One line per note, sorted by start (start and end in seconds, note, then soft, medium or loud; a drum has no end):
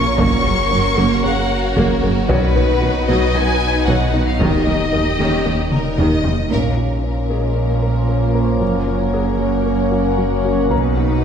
0.00 0.20 A#1 medium
0.00 0.19 F3 medium
0.00 2.30 A#3 medium
0.00 2.26 C#4 medium
0.00 0.19 F4 medium
0.00 0.15 A#4 soft
0.00 0.19 A#4 medium
0.00 2.30 C#5 medium
0.00 0.17 C#6 loud
0.18 2.31 F#1 medium
0.18 0.27 F#1 medium
0.18 0.26 F#2 medium
0.18 4.40 F#3 medium
0.18 0.34 F#3 medium
0.18 0.43 A#3 medium
0.18 4.39 F#4 medium
0.18 4.36 F#4 medium
0.18 2.25 A#4 medium
0.18 1.22 C#6 loud
0.18 taiko medium
0.44 0.53 F#1 soft
0.44 0.53 F#2 soft
0.44 0.52 C#3 soft
0.44 0.60 F#4 medium
0.70 0.80 F#1 soft
0.70 0.79 F#2 soft
0.70 0.78 F#3 soft
0.70 0.87 C#4 medium
0.97 1.06 F#1 medium
0.97 1.06 F#2 medium
0.97 1.13 F#3 medium
0.97 1.22 A#3 medium
1.23 1.32 F#1 medium
1.23 1.32 F#2 soft
1.23 1.31 C#3 soft
1.23 1.40 C#4 medium
1.23 1.76 F#5 medium
1.76 1.85 F#1 medium
1.76 1.85 F#2 medium
1.76 1.92 F#3 medium
1.76 2.01 A#3 medium
1.76 taiko medium
2.02 2.10 F#1 soft
2.02 2.11 F#2 soft
2.02 2.10 C#3 soft
2.02 2.19 A#3 medium
2.29 2.37 B1 medium
2.29 4.42 B1 medium
2.29 2.37 B2 medium
2.29 2.54 F#3 medium
2.29 4.40 B3 medium
2.29 2.45 B3 medium
2.29 3.84 C#4 soft
2.29 6.27 D#4 medium
2.29 3.05 B4 medium
2.29 4.40 B4 medium
2.29 3.84 C#5 soft
2.29 6.51 D#5 medium
2.29 taiko medium
2.55 2.64 B1 soft
2.55 2.64 B2 soft
2.55 2.63 D#3 soft
2.55 2.72 B4 medium
2.82 2.90 B1 medium
2.82 2.90 B2 soft
2.82 2.90 D#3 soft
2.82 2.98 F#4 medium
2.82 4.37 B4 soft
3.08 3.16 B1 medium
3.08 3.17 B2 medium
3.08 3.33 F#3 medium
3.08 3.24 B3 medium
3.08 3.35 D#5 medium
3.34 3.43 B1 soft
3.34 3.44 B2 soft
3.34 3.43 D#3 soft
3.34 3.51 F#4 medium
3.34 3.87 G#5 medium
3.87 3.96 B1 medium
3.87 3.96 B2 medium
3.87 4.12 F#3 medium
3.87 4.03 B3 medium
3.87 4.27 F#5 medium
3.87 taiko medium
4.14 4.22 B1 soft
4.14 4.23 B2 soft
4.14 4.22 D#3 soft
4.14 4.30 D#4 medium
4.27 4.40 F5 medium
4.39 6.50 D#1 medium
4.39 4.49 D#2 medium
4.39 4.56 D#3 medium
4.39 4.65 D#3 medium
4.39 6.51 G3 medium
4.39 6.50 A#3 medium
4.39 6.51 D#4 medium
4.39 4.87 G4 soft
4.39 4.87 A#4 soft
4.39 6.24 D#5 medium
4.39 5.94 D#5 soft
4.39 taiko medium
4.67 4.75 D#2 soft
4.67 4.75 D#3 soft
4.67 4.82 D#4 soft
4.92 5.01 D#2 soft
4.92 5.02 D#2 soft
4.92 5.01 D#3 soft
4.92 5.08 A#3 medium
4.92 5.67 G4 medium
5.19 5.27 D#2 medium
5.19 5.28 D#2 medium
5.19 5.35 D#3 medium
5.19 5.43 D#3 medium
5.19 6.48 C#4 soft
5.19 6.47 C#5 soft
5.45 5.53 D#2 soft
5.45 5.54 D#2 soft
5.45 5.53 D#3 soft
5.45 5.61 A#3 medium
5.71 5.98 A#4 medium
5.71 taiko mid medium
5.98 6.06 D#2 medium
5.98 6.07 D#2 medium
5.98 6.14 D#3 medium
5.98 6.23 D#3 medium
5.98 6.51 D#5 medium
5.98 taiko low-mid medium
6.24 6.32 D#2 soft
6.24 6.33 D#2 soft
6.24 6.32 D#3 soft
6.24 6.40 G3 medium
6.24 taiko low medium
6.50 8.62 A#1 soft
6.50 8.57 A#2 medium
6.50 8.58 F3 medium
6.50 10.68 A#3 medium
6.50 6.67 A#3 medium
6.50 10.68 C#4 medium
6.50 10.68 C#4 soft
6.50 8.58 F4 medium
6.50 10.68 A#4 soft
6.50 10.68 C#5 medium
6.50 8.58 F5 soft
6.50 taiko soft
6.77 6.93 F4 soft
7.04 7.19 C#4 soft
7.30 8.84 G#3 soft
7.30 7.45 A#3 medium
7.30 8.84 G#4 soft
7.56 7.72 C#4 soft
7.83 7.98 A#4 soft
8.09 8.24 A#3 medium
8.34 9.88 A#3 soft
8.34 9.89 A#4 soft
8.34 8.51 A#4 soft
8.61 10.73 F#1 medium
8.61 10.68 F#2 soft
8.61 11.24 F#3 medium
8.61 8.77 F#3 medium
8.61 10.72 C#4 medium
8.61 11.24 F#5 soft
8.87 9.03 C#4 soft
9.13 9.30 A#3 medium
9.13 10.68 G#4 soft
9.39 9.55 F#3 medium
9.66 9.82 A#3 soft
9.92 10.08 F#4 medium
10.18 10.34 F#3 medium
10.45 10.61 F#4 medium
10.70 11.24 B1 medium
10.70 11.24 B2 medium
10.70 11.24 A#3 soft
10.70 10.87 B3 medium
10.70 11.24 D#4 medium
10.70 11.24 B4 medium
10.70 11.24 D#5 medium
10.70 11.24 A#5 medium
10.70 taiko medium
10.97 11.13 F#4 medium